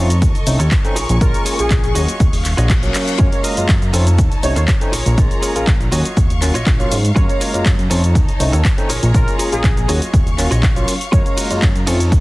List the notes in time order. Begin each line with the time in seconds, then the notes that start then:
Already playing: F2 D#4 F4 A4 C#5 D#5 C#6
0.10 closed hi-hat, cabasa
0.22 D#2, kick, closed hi-hat, cabasa
0.35 C2, closed hi-hat, cabasa
0.46 C2 A3 C4 C#4 D#4, muted clean electric guitar stroke, open hi-hat, cabasa
0.59 D#2 D#4 F4 A4 C#5, closed hi-hat, cabasa
0.71 kick, clap, closed hi-hat, cabasa
0.84 A3 C4 C#4 D#4, closed hi-hat, cabasa
0.96 A#1 F4 G#4 A#4 C#5 G#5, open hi-hat, cabasa
1.09 A#1, closed hi-hat, cabasa
1.21 A#1 G#3 A#3 C#4 F4 A#4, kick, closed hi-hat, cabasa
1.34 closed hi-hat, cabasa
1.45 F4 G#4 A#4 C#5, open hi-hat, cabasa
1.59 A#1 G#3 A#3 C#4 F4 G#4, closed hi-hat, cabasa
1.70 A#1, kick, clap, closed hi-hat, cabasa
1.84 A#1, closed hi-hat, cabasa
1.95 D#2 F#3 A#3 C#4 F4 F#4 C#5 D#5 F5, open hi-hat, cabasa
2.08 closed hi-hat, cabasa
2.20 D#1, kick, closed hi-hat, reverse cymbal, cabasa
2.33 open hi-hat, cabasa
2.44 muted clean electric guitar stroke, clap, open hi-hat, cabasa
2.57 A#1 F4 F#4 C#5 D#5, closed hi-hat, cabasa
2.70 kick, clap, closed hi-hat, cabasa
2.83 F#3 A#3 C#4, closed hi-hat, cabasa
2.94 muted clean electric guitar stroke, clap, open hi-hat, cabasa
3.08 closed hi-hat, cabasa
3.18 F#2 G#3 A#3 C#4 F4 F#4 A#4 C#5 F5 A#5, kick, closed hi-hat, cabasa
3.32 C#5, closed hi-hat, cabasa
3.43 F4 F#4 A#4 D#5, open hi-hat, cabasa
3.57 F#2 G#3 A#3 C#4 F4, closed hi-hat, cabasa
3.69 F#2, kick, clap, closed hi-hat, cabasa
3.82 F#2, closed hi-hat, cabasa
3.93 F2 A3 C4 C#4 D#4 F4 A4 C#5 A5, open hi-hat, cabasa
4.07 closed hi-hat, cabasa
4.18 D#2, kick, closed hi-hat, cabasa
4.31 C2, closed hi-hat, cabasa
4.43 C2 A3 C4 C#4 D#4 C#5, muted clean electric guitar stroke, open hi-hat, cabasa
4.56 D#2 D#4 F4 A4 C5 C#5, closed hi-hat, cabasa
4.68 kick, clap, closed hi-hat, cabasa
4.81 A3 C4 C#4 D#4, closed hi-hat, cabasa
4.92 A#1 F4 G#4 A#4 C#5 A#5, open hi-hat, cabasa
5.06 A#1, closed hi-hat, cabasa
5.17 A#1 G#3 A#3 C#4 F4, kick, closed hi-hat, cabasa
5.31 closed hi-hat, cabasa
5.42 F4 G#4 A#4 C#5, open hi-hat, cabasa
5.55 A#1 G#3 A#3 C#4 F4, closed hi-hat, cabasa
5.67 A#1, kick, clap, closed hi-hat, cabasa
5.80 A#1, closed hi-hat, cabasa
5.92 D#2 F#3 A#3 C#4 F4 F#4 C#5 D#5 F5 C#6, open hi-hat, cabasa
6.05 closed hi-hat, cabasa
6.17 D#1, kick, closed hi-hat, cabasa
6.30 closed hi-hat, cabasa
6.41 F#3 A#3 C#4 F4, muted clean electric guitar stroke, clap, open hi-hat, cabasa
6.54 A#1 F4 F#4 C#5 D#5, closed hi-hat, cabasa
6.67 A#1, kick, clap, closed hi-hat, cabasa
6.79 F#3 A#3 C#4 F4, closed hi-hat, cabasa
6.91 G#2, muted clean electric guitar stroke, open hi-hat, cabasa
7.05 closed hi-hat, cabasa
7.16 F#2 G#3 A#3 C#4 F4 F#4 A#4 C#5 F5 A#5, kick, closed hi-hat, cabasa
7.29 C#5, closed hi-hat, cabasa
7.40 F4 F#4 A#4 C#5, open hi-hat, cabasa
7.54 F#2 G#3 A#3 C#4 F4, closed hi-hat, cabasa
7.66 F#2, kick, clap, closed hi-hat, cabasa
7.79 F#2, closed hi-hat, cabasa
7.90 F2 A3 C4 C#4 D#4 F4 A4 C#5 A5, open hi-hat, cabasa
8.04 closed hi-hat, cabasa
8.15 D#2, kick, closed hi-hat, cabasa
8.29 C2, closed hi-hat, cabasa
8.39 C2 A3 C4 C#4 D#4, muted clean electric guitar stroke, open hi-hat, cabasa
8.53 D#2 D#4 F4 A4 C#5, closed hi-hat, cabasa
8.65 kick, clap, closed hi-hat, cabasa
8.77 A3 C4 C#4 D#4, closed hi-hat, cabasa
8.89 A#1 F4 G#4 A#4 C#5 A#5, open hi-hat, cabasa
9.03 A#1, closed hi-hat, cabasa
9.14 A#1 G#3 A#3 C#4 F4 A#4, kick, closed hi-hat, cabasa
9.28 closed hi-hat, cabasa
9.39 F4 G#4 A#4 C#5, open hi-hat, cabasa
9.52 A#1 G#3 A#3 C#4 F4 G#4, closed hi-hat, cabasa
9.64 A#1, kick, clap, closed hi-hat, cabasa
9.77 A#1, closed hi-hat, cabasa
9.88 D#2 F#3 A#3 C#4 F4 F#4 C#5 D#5 F5 C#6, open hi-hat, cabasa
10.02 closed hi-hat, cabasa
10.14 D#1, kick, closed hi-hat, cabasa
10.27 closed hi-hat, cabasa
10.38 F#3 A#3 C#4 F4, muted clean electric guitar stroke, clap, open hi-hat, cabasa
10.51 A#1 F4 F#4 C#5 D#5, closed hi-hat, cabasa
10.63 kick, clap, closed hi-hat, cabasa
10.76 F#3 A#3 C#4 F4, closed hi-hat, cabasa
10.87 muted clean electric guitar stroke, open hi-hat, cabasa
11.01 closed hi-hat, cabasa
11.12 F#2 G#3 A#3 C#4 F4 F#4 A#4 C#5 F5 A#5, kick, closed hi-hat, cabasa
11.26 C#5, closed hi-hat, cabasa
11.37 F4 F#4 A#4 C#5, open hi-hat, ride, cabasa
11.50 F#2 G#3 A#3 C#4 F4, closed hi-hat, cabasa
11.62 F#2, kick, clap, closed hi-hat, cabasa
11.75 F#2, closed hi-hat, cabasa
11.87 F2 A3 C4 C#4 D#4 F4 A4 C#5 A5, open hi-hat, ride, cabasa
12.00 closed hi-hat, cabasa
12.12 D#2, kick, closed hi-hat, cabasa